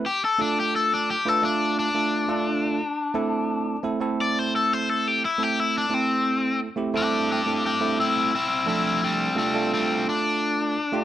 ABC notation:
X:1
M:4/4
L:1/16
Q:1/4=87
K:Am
V:1 name="Overdriven electric guitar"
G A D G A D G A D2 D6- | D6 z2 d c A c A G E G | E D C4 z2 [DG]2 [DG]2 [DG]2 [CE]2 | [CE]2 [CE]2 [G,C]2 [G,C]2 [G,C]2 D6 |]
V:2 name="Tine electric piano"
z2 [A,DFA]4 z [A,DFB] [A,DFA]3 [A,DFA]2 [A,DFA]3 | z2 [A,CEA]4 [A,CEA] [A,CEA]6- [A,CEA] z [A,CEA]- | [A,CEA]2 [A,CEA]4 z [A,CEG] [A,CEA]3 [A,CEA]2 [A,CEA]3 | z2 [F,A,DA]4 [A,DFA] [A,DFA]6- [A,DFA] z [A,DFG] |]